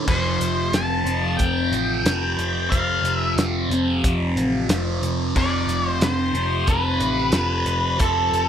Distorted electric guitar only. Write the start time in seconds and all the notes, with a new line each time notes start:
0.06 F2 C3 F3
1.06 F2 C3 F3
2.04 F2 C3 F3
2.70 F2 C3 F3
3.70 F2 C3 F3
4.69 F2 C3 F3
5.36 F2 C3 F3
6.34 F2 C3 F3
7.32 F2 C3 F3
7.99 F2 C3 F3